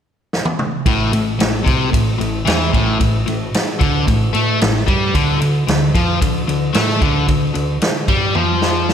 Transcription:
0.33 snare
0.45 high tom
0.59 mid tom
0.86 A1 A2, kick, ride
1.12 A1 A2, ride
1.39 A1 A2, snare, ride
1.64 C2 C3, kick, ride
1.91 A1 A2, kick, ride
2.19 A1 A2, ride
2.45 E2 E3, snare, ride
2.73 A1 A2, kick, ride
2.99 A1 A2, kick, ride
3.26 A1 A2, ride
3.54 snare, ride
3.79 D2 D3, kick, ride
4.07 A1 A2, kick, ride
4.33 A2 A3, ride
4.60 A1 A2, snare, ride
4.76 snare
4.87 G2 G3, kick, ride
5.14 D2 D3, kick, ride
5.41 D2 D3, ride
5.67 D2 D3, snare, ride
5.95 F2 F3, kick, ride
6.21 D2 D3, kick, ride
6.47 D2 D3, ride
6.73 A2 A3, snare, ride
6.89 snare
7.00 D2 D3, kick, ride
7.28 D2 D3, kick, ride
7.54 D2 D3, ride
7.81 snare, ride
8.08 G2 G3, kick, ride
8.35 F2 F3, high tom
8.62 snare
8.89 snare

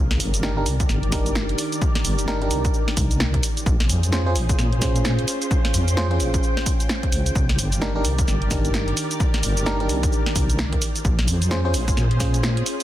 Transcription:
Already playing: C2 D#3 G4 A#4 D5
0.11 snare, closed hi-hat
0.20 G1, open hi-hat, shaker
0.34 closed hi-hat, shaker
0.43 D4 D#4 G4 A#4, snare, shaker
0.57 D4 D#4 G4 A#4
0.66 C2, open hi-hat, shaker
0.80 kick, closed hi-hat, shaker
0.89 G1, snare, shaker
1.03 closed hi-hat
1.12 D4 D#4 G4 A#4, kick, snare, open hi-hat, shaker
1.26 closed hi-hat, shaker
1.35 snare, shaker
1.49 closed hi-hat
1.58 open hi-hat, shaker
1.72 closed hi-hat, shaker
1.82 kick, shaker
1.95 snare, closed hi-hat
2.05 G1, open hi-hat, shaker
2.19 closed hi-hat, shaker
2.28 D4 D#4 G4 A#4, snare, shaker
2.42 D4 D#4 G4 A#4, closed hi-hat
2.51 C2, open hi-hat, shaker
2.65 kick, closed hi-hat, shaker
2.74 shaker
2.88 snare, closed hi-hat
2.97 C2, kick, open hi-hat, shaker
3.11 closed hi-hat, shaker
3.20 snare, shaker
3.34 kick, closed hi-hat
3.43 C#4 F4 G#4 C5, open hi-hat, shaker
3.57 closed hi-hat, shaker
3.66 A#1, kick, shaker
3.80 snare, closed hi-hat
3.89 F2, open hi-hat, shaker
4.03 closed hi-hat, shaker
4.12 C#4 F4 G#4 C5, snare, shaker
4.26 C#4 F4 G#4 C5
4.35 A#1, open hi-hat, shaker
4.49 kick, closed hi-hat, shaker
4.59 A#2, snare, shaker
4.72 closed hi-hat
4.82 C#4 F4 G#4 C5, kick, snare, open hi-hat, shaker
4.96 closed hi-hat, shaker
5.05 snare, shaker
5.19 closed hi-hat
5.28 G5, open hi-hat, shaker
5.42 closed hi-hat, shaker
5.51 kick, shaker
5.65 snare, closed hi-hat
5.74 F2, open hi-hat, shaker
5.88 closed hi-hat, shaker
5.97 C#4 F4 G#4 C5, snare, shaker
6.11 C#4 F4 G#4 C5, closed hi-hat
6.20 A#1, open hi-hat, shaker
6.34 kick, closed hi-hat, shaker
6.43 shaker
6.57 snare, closed hi-hat
6.66 kick, open hi-hat, shaker
6.80 closed hi-hat, shaker
6.89 snare, shaker
7.03 kick, closed hi-hat
7.12 C#2, open hi-hat, shaker
7.26 closed hi-hat, shaker
7.35 C2 D#3 G4 A#4 D5, kick, shaker
7.49 snare, closed hi-hat
7.59 G1, open hi-hat, shaker
7.72 closed hi-hat, shaker
7.82 D4 D#4 G4 A#4, snare, shaker
7.95 D4 D#4 G4 A#4
8.05 C2, open hi-hat, shaker
8.19 kick, closed hi-hat, shaker
8.28 G1, snare, shaker
8.42 closed hi-hat
8.51 D4 D#4 G4 A#4, kick, snare, open hi-hat, shaker
8.65 closed hi-hat, shaker
8.74 snare, shaker
8.88 closed hi-hat
8.97 open hi-hat, shaker
9.11 closed hi-hat, shaker
9.20 kick, shaker
9.34 snare, closed hi-hat
9.43 G1, open hi-hat, shaker
9.57 closed hi-hat, shaker
9.66 D4 D#4 G4 A#4, snare, shaker
9.80 D4 D#4 G4 A#4, closed hi-hat
9.89 C2, open hi-hat, shaker
10.03 kick, closed hi-hat, shaker
10.12 shaker
10.26 snare, closed hi-hat
10.36 C2, kick, open hi-hat, shaker
10.50 closed hi-hat, shaker
10.59 snare, shaker
10.72 kick, closed hi-hat
10.82 C#4 F4 G#4 C5, open hi-hat, shaker
10.96 closed hi-hat, shaker
11.05 A#1, kick, shaker
11.19 snare, closed hi-hat
11.28 F2, open hi-hat, shaker
11.42 closed hi-hat, shaker
11.51 C#4 F4 G#4 C5, snare, shaker
11.65 C#4 F4 G#4 C5
11.74 A#1, open hi-hat, shaker
11.88 kick, closed hi-hat, shaker
11.97 A#2, snare, shaker
12.11 closed hi-hat
12.20 C#4 F4 G#4 C5, kick, snare, open hi-hat, shaker
12.34 closed hi-hat, shaker
12.43 snare, shaker
12.57 closed hi-hat
12.66 A#4, open hi-hat, shaker

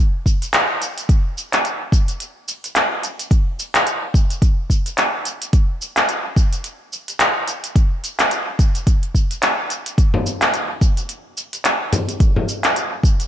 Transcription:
0.26 kick, shaker
0.42 closed hi-hat, shaker
0.54 clap, closed hi-hat, shaker
0.82 closed hi-hat, shaker
0.98 closed hi-hat, shaker
1.09 kick, closed hi-hat, shaker
1.38 shaker
1.53 clap, closed hi-hat, shaker
1.65 closed hi-hat, shaker
1.92 kick, shaker
2.08 closed hi-hat, shaker
2.20 closed hi-hat, shaker
2.48 shaker
2.64 closed hi-hat, shaker
2.76 clap, closed hi-hat, shaker
3.03 closed hi-hat, shaker
3.19 closed hi-hat, shaker
3.31 kick, closed hi-hat, shaker
3.60 shaker
3.75 clap, closed hi-hat, shaker
3.87 closed hi-hat, shaker
4.14 kick, shaker
4.30 closed hi-hat, shaker
4.42 kick, closed hi-hat, shaker
4.70 kick, shaker
4.86 closed hi-hat, shaker
4.98 clap, closed hi-hat, shaker
5.25 closed hi-hat, shaker
5.42 closed hi-hat, shaker
5.53 kick, closed hi-hat, shaker
5.82 shaker
5.97 clap, closed hi-hat, shaker
6.09 closed hi-hat, shaker
6.36 kick, shaker
6.53 closed hi-hat, shaker
6.64 closed hi-hat, shaker
6.93 shaker
7.08 closed hi-hat, shaker
7.20 clap, closed hi-hat, shaker
7.48 closed hi-hat, shaker
7.64 closed hi-hat, shaker
7.76 kick, closed hi-hat, shaker
8.04 closed hi-hat, shaker
8.19 clap, closed hi-hat, shaker
8.31 closed hi-hat, shaker
8.59 kick, closed hi-hat, shaker
8.75 closed hi-hat, shaker
8.87 kick, closed hi-hat, shaker
9.03 closed hi-hat
9.15 kick, shaker
9.31 closed hi-hat, shaker
9.43 clap, closed hi-hat, shaker
9.70 closed hi-hat, shaker
9.86 closed hi-hat, shaker
9.98 kick, closed hi-hat, shaker
10.14 frame drum
10.27 shaker
10.42 clap, closed hi-hat, shaker
10.54 closed hi-hat, shaker
10.81 kick, shaker
10.97 closed hi-hat, shaker
11.09 closed hi-hat, shaker
11.38 shaker
11.53 closed hi-hat, shaker
11.65 clap, closed hi-hat, shaker
11.93 closed hi-hat, frame drum, shaker
12.09 closed hi-hat, shaker
12.20 kick, closed hi-hat, shaker
12.36 frame drum
12.49 shaker
12.64 clap, closed hi-hat, shaker
12.76 closed hi-hat, shaker
13.03 kick, shaker
13.20 closed hi-hat, shaker

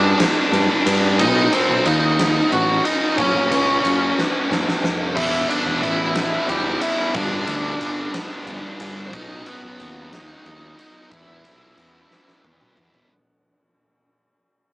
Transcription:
Already playing: G2 D3 G3 B3 D4 D5
0.19 G3 B3 D4, snare, ride
0.52 G2 D3 G3 B3 D4, ride
0.86 G2 G3 B3 D4, ride
1.19 B1 B2 F#3 B3 D#4 D#5, kick, ride
1.51 F#3 B3 C4 D#4 C5, ride
1.69 B1
1.85 D#2 B2 F#3 B3 D#4 D#5, ride
2.18 F#3 B3 D#4, snare, ride
2.50 A1 B2 F#3 B3 D#4 F#4 F#5, ride
2.83 F#3 B3 D#4 D#5, ride
3.17 F#1 F#2 C#3 F#3 A#3 C#4 C#5, kick, ride
3.35 F#1
3.50 C#2 F#3 A#3 C#4, ride
3.82 F#1 C#3 F#3 A#3 C#4, ride
4.15 F#3 A#3 C#4, snare
4.49 F#1 C#3 F#3 A#3 C#4, snare
4.68 snare
4.82 F1 F#3 A#3 C#4, snare
5.14 E1 E2 B2 E3 G3 B3 E4 E5, kick, crash
5.48 G3 B3 D4 E4 D5, ride
5.66 E1
5.81 A1 E3 G3 B3 E4 E5, ride
6.14 B2 E3 G3 B3 E4, snare, ride
6.18 E2
6.48 D2 E3 G3 B3 E4 G4 G5, ride
6.81 G3 B3 E4 E5, ride
7.13 G1 G2 D3 G3 B3 D4 D5, kick, ride
7.18 G3
7.31 G1
7.46 D2 G3 B3 D4, ride
7.79 G1 D3 G3 B3 D4, ride
8.12 D3 G3 B3 D4, snare, ride
8.17 G2
8.45 G1 D3 G3 B3 D4, ride
8.78 G1 G3 B3 D4, ride
9.07 B2 C5
9.12 B1 B2 D#3 F#3 B3 D#4 D#5, kick, ride
9.45 F#3 B3 D#4 B4, ride
9.63 B1
9.78 D#2 D#3 F#3 B3 D#4, ride
10.11 F#3 B3 D#4 D#5, snare, ride
10.15 B2
10.44 D#2 D#3 F#3 B3 D#4, ride
10.77 F#3 B3 D#4 D#5, ride
11.10 E2 B2 E3 G3 B3 E4 E5, kick, ride
11.28 E2
11.43 B1 G3 B3 E4, ride
11.76 E2 E3 G3 B3 E4, ride
12.09 B2 E3 G3 B3 E4, snare
12.14 E2
12.28 snare
12.42 E2 E3 G3 B3 E4, high tom
12.61 mid tom
12.76 E2 G3 B3 E4, mid tom
12.94 floor tom

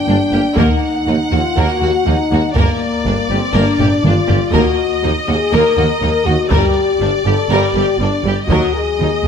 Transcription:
Already playing: D4 G5
0.07 G1 G2 A#3 D4
0.31 G1 G2 A#3 G4
0.56 D#2 A#3 D#4 A#4, taiko
0.60 F#5
1.06 D#2 A#3 D#4
1.31 D#2 A#3 F4 F#4
1.56 D#2 A#3 F#4 A#4
1.81 D#2 A#3 F#4
2.06 D#2 A#3 D#4
2.31 D#2 A#3 F#4
2.55 G1 G2 A#3 A#4 D5, taiko
3.04 G1 G2 A#3 D4
3.29 G1 G2 A#3 C4 G4
3.54 G1 G2 A#3 D4 A#4
3.78 G1 G2 A#3 G4, taiko low-mid
4.03 G1 G2 A#3 D4 F4, taiko mid
4.27 G1 G2 A#3 G4, taiko low
4.53 D#2 A#3 F#4 A#4 D#5, taiko
5.02 D#2 A#3 D#4
5.27 D#2 A#3 F#4 G#4
5.52 D#2 A#3 A#4
5.77 D#2 A#3 F#4
6.02 D#2 A#3 D#4
6.25 D#2 A#3 F#4
6.50 G1 G2 G3 G4 A#4 D5, taiko
6.99 G1 G2 G3 D4
7.24 G1 G2 G3 G4 A4
7.49 G1 G2 G3 G4 A#4
7.74 G1 G2 G3 G4
7.98 G1 G2 G3 D4
8.03 D4
8.23 G1 G2 G3 G4
8.47 D#2 F#3 F#4 D#5, taiko
8.52 A#4
8.74 G#4
8.99 D#2 F#3 D#4
9.24 D#2 F#3

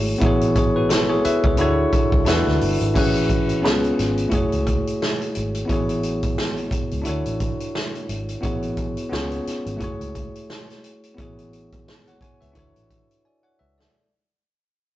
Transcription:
Already playing: G#1 A3 E4 F#4 G#4 C#5
0.18 A1 B3 E4 F#4, kick, closed hi-hat
0.24 G#4 C#5
0.41 closed hi-hat
0.55 G#4 C#5, kick, closed hi-hat
0.76 F#4 B4
0.89 E4 A4, snare, closed hi-hat
1.09 G#4 C#5
1.25 B4 E5, muted fingered electric bass stroke, closed hi-hat
1.44 C#2 G#4 C#5, kick
1.57 D2 D4 E4 F#4 A4, closed hi-hat
1.61 C#5
1.93 muted fingered electric bass stroke, kick, closed hi-hat
2.12 C#2, kick
2.25 E2 D4 E4 F#4 A4, snare, closed hi-hat
2.29 B4
2.47 D2, snare
2.61 G1, open hi-hat
2.81 G#1, closed hi-hat
2.94 A1 C#4 E4 F#4 G#4 B4, kick, crash
3.15 closed hi-hat
3.30 kick, closed hi-hat
3.49 closed hi-hat
3.62 C#2 B3 C#4 F4 G#4 A4, snare
3.73 B4
3.84 closed hi-hat
3.99 G#1, snare, closed hi-hat
4.18 closed hi-hat
4.28 F#1 A3 E4 F#4, kick, closed hi-hat
4.33 G#4 C#5
4.52 C#2, closed hi-hat
4.67 kick, closed hi-hat
4.87 closed hi-hat
5.02 snare
5.22 closed hi-hat
5.35 G#1, closed hi-hat
5.55 closed hi-hat
5.65 B3 E4
5.69 A1 F#4 G#4 C#5, kick, closed hi-hat
5.89 closed hi-hat
6.03 closed hi-hat
6.23 kick, closed hi-hat
6.38 snare
6.57 closed hi-hat
6.71 muted fingered electric bass stroke, kick, closed hi-hat
6.91 C#2, closed hi-hat
7.02 D4 E4 F#4, closed hi-hat
7.07 D2 A4 C#5
7.26 A1, closed hi-hat
7.40 kick, closed hi-hat
7.60 closed hi-hat
7.75 snare
7.95 closed hi-hat
8.09 G#1, closed hi-hat
8.29 closed hi-hat
8.41 A1 B3 E4 F#4 G#4 C#5, kick, closed hi-hat
8.62 closed hi-hat
8.77 kick, closed hi-hat
8.97 closed hi-hat
9.09 C#2 B3 C#4 F4 G#4 C#5, snare
9.31 closed hi-hat
9.47 muted fingered electric bass stroke, snare, closed hi-hat
9.66 G#1, closed hi-hat
9.77 A3 E4 F#4, kick, closed hi-hat
9.81 F#1 G#4 C#5
10.01 C#2, closed hi-hat
10.15 kick, closed hi-hat
10.35 closed hi-hat
10.50 snare
10.70 snare, closed hi-hat
10.84 closed hi-hat
11.04 closed hi-hat
11.15 B3 E4 F#4, kick
11.19 A1 G#4 C#5, closed hi-hat
11.39 closed hi-hat
11.53 closed hi-hat
11.72 kick, closed hi-hat
11.88 snare
12.07 C#5 F#5, closed hi-hat
12.21 C#5 G#5, muted fingered electric bass stroke, kick, closed hi-hat
12.41 C#2 B4 E5, closed hi-hat
12.52 D4 E4 F#4, kick, closed hi-hat
12.56 D2 A4 C#5
12.76 A1, closed hi-hat
12.90 kick, closed hi-hat
13.11 closed hi-hat
13.25 D5 G#5
13.43 C#5 F#5
13.59 C#2 B4 E5
13.78 A4 D5, snare

